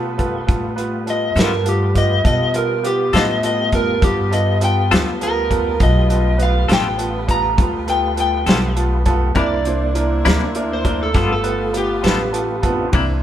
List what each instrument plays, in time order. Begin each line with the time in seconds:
Already playing: upright bass B2, saxophone section G3 B3 F4, tonewheel organ A3 F4 G4 B4, upright piano B3 F4 A4, electric slide guitar B4
0.18 upright piano B3 F4 A4, kick, closed hi-hat
0.47 upright bass A2, upright piano B3 F4 A4, kick, closed hi-hat
0.76 upright piano B3 F4 B4, closed hi-hat
1.06 upright piano B3 F4 A4, electric slide guitar D#5, closed hi-hat
1.35 upright bass G2, clean electric guitar G3 B3 F4 A4, upright piano B3 F4 A4, electric slide guitar A#4, snare, closed hi-hat
1.65 upright piano B3 F4 A4, closed hi-hat
1.69 electric slide guitar G4
1.95 upright piano B3 F4 G4, electric slide guitar D#5, kick, closed hi-hat
2.23 upright bass B2, tonewheel organ G3 B3 F4 G4, upright piano B3 F4 A4, electric slide guitar D#5, kick, closed hi-hat
2.54 upright piano B3 F4 A4, electric slide guitar A#4, closed hi-hat
2.83 upright piano B3 F4 G4, electric slide guitar G4, closed hi-hat
3.12 upright bass A2, clean electric guitar G3 B3 F4 A4, upright piano B3 F4 A4, snare, closed hi-hat
3.16 electric slide guitar D#5
3.43 upright piano B3 F4 A4, electric slide guitar D#5, closed hi-hat
3.72 upright piano B3 F4 A4, electric slide guitar A#4, kick, closed hi-hat
4.02 upright bass G2, upright piano B3 F4 A4, electric slide guitar G4, kick, closed hi-hat
4.31 upright piano B3 F4 A4, electric slide guitar D#5, closed hi-hat
4.61 upright piano B3 F4 A4, electric slide guitar G5, closed hi-hat
4.90 upright bass D2, clean electric guitar G3 B3 F4 A4, upright piano B3 F4 A4, snare, closed hi-hat
5.21 upright piano B3 F4 A4, electric slide guitar A#4, closed hi-hat
5.50 upright piano B3 F4 A4, kick, closed hi-hat
5.80 upright bass B1, tonewheel organ A3 F4 G4 B4, upright piano B3 F4 A4, electric slide guitar D#5, kick, closed hi-hat
6.10 upright piano B3 F4 A4, closed hi-hat
6.38 upright piano B3 F4 B4, closed hi-hat
6.43 electric slide guitar F5
6.68 upright bass A1, clean electric guitar G3 B3 F4 A4, upright piano B3 F4 A4, snare, closed hi-hat
6.73 electric slide guitar G5
6.98 upright piano B3 F4 A4, closed hi-hat
7.28 upright piano B3 F4 A4, electric slide guitar A#5, kick, closed hi-hat
7.57 upright bass D2, upright piano B3 F4 A4, kick, closed hi-hat
7.87 upright piano B3 F4 A4, electric slide guitar G5, closed hi-hat
8.16 upright piano B3 F4 A4, closed hi-hat
8.20 electric slide guitar G5
8.46 upright bass B1, clean electric guitar G3 B3 F4 A4, upright piano B3 F4 A4, snare, closed hi-hat
8.76 upright piano B3 F4 A4, closed hi-hat
9.06 upright piano B3 F4 A4, kick, closed hi-hat
9.35 upright bass C2, clean electric guitar C3 A#3 D4 E4, tonewheel organ A#3 D4 E4 C5, saxophone section A#3 D4 E4, upright piano D4 E4 A#4, kick, closed hi-hat
9.39 electric slide guitar D5
9.65 upright piano D4 E4 C5, closed hi-hat
9.95 upright piano D4 E4 A#4, closed hi-hat
10.25 upright bass D2, clean electric guitar C3 A#3 D4 E4, upright piano D4 E4 A#4, snare, closed hi-hat
10.55 upright piano D4 E4 A#4, closed hi-hat
10.73 electric slide guitar C5
10.85 upright piano D4 E4 A#4, kick, closed hi-hat
11.03 electric slide guitar A4
11.13 upright bass G1, clean electric guitar G3 B3 F4, saxophone section A3 B3 F4, tonewheel organ A3 F4 G4 B4, upright piano B3 F4 A4, kick, snare, closed hi-hat
11.18 clean electric guitar A4
11.32 electric slide guitar A4
11.44 upright piano B3 F4 B4, closed hi-hat
11.73 upright piano B3 F4 B4, electric slide guitar G4, closed hi-hat
12.03 upright bass A1, clean electric guitar G3 B3 F4 A4, upright piano B3 F4 B4, snare, closed hi-hat
12.33 upright piano B3 F4 A4, closed hi-hat
12.61 tonewheel organ A3 B3, upright piano B3 F4 A4, kick, closed hi-hat
12.67 tonewheel organ C4 D4
12.73 tonewheel organ E4 F4
12.78 tonewheel organ G4 A4
12.84 tonewheel organ B4 C5
12.89 upright piano E3 A#3, tonewheel organ A#3 D4 E4 C5 D5
12.93 upright bass C2, clean electric guitar C3 A#3 D4 E4, upright piano D4, kick, ride